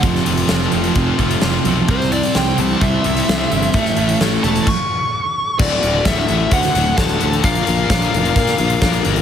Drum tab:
CC |----------------|----------------|--------x-------|x---------------|
HH |x-xxx-xxx-xxx-x-|x-xxx-x-x-xxx-xx|x-xxx-xx--------|--x-x-x-xxx-xxxx|
SD |-o--o-------o---|-o--o-------o---|-o--o-----------|----o----o--o---|
BD |o-------o-o-----|o-------o-------|o-------o-------|o---o---o---o---|

CC |----------------|
HH |xxx-xxxxxxxxxxxx|
SD |----o----o--o---|
BD |o---o---o---o---|